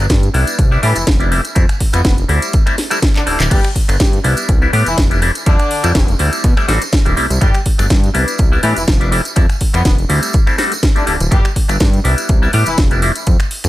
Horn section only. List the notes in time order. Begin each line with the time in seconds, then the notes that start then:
0.83 E3 E4
0.96 E3 E4
1.94 B3
2.05 B3
3.16 D3 D4
3.27 D3 D4
3.52 G3 G4
4.86 E3 E4
5.47 D3 D4
7.42 G3 G4
8.64 E3 E4
8.77 E3 E4
9.74 B3
9.85 B3
10.96 D3 D4
11.07 D3 D4
11.32 G3 G4
12.67 E3 E4